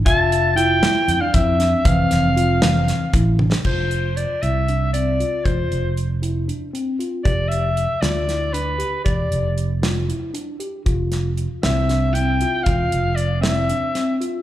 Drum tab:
CC |--------------|--------------|x-------------|--------------|
HH |x-x-x-x-x-x-x-|x-x-x-x-x-x---|--x-x-x-x-x-x-|x-x-x-x-x-x-x-|
SD |------o-----o-|--o---o-o----o|--------------|--------------|
T1 |--------------|------------o-|--------------|--------------|
BD |o---------o---|o---------o---|o-------------|o-------------|

CC |--------------|--------------|--------------|--------------|
HH |x-x-x-x-x-x-x-|x-x-x-x-x-x-x-|x-x-x-x-x-x-x-|x-x-x-x-x-x-x-|
SD |------o-o-----|------o-------|--o---o-o-----|------o---o---|
T1 |--------------|--------------|--------------|--------------|
BD |o-------------|o-------------|o-------------|o-------------|